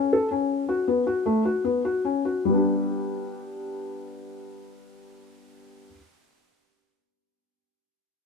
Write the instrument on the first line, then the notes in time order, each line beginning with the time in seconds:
felt piano
0.13 A4
0.31 C#4
0.69 F#4
0.88 B3
1.07 F#4
1.26 A3
1.45 F#4
1.64 B3
1.85 F#4
2.05 C#4
2.25 F#4
2.45 G3
2.49 B3
2.53 D4 G4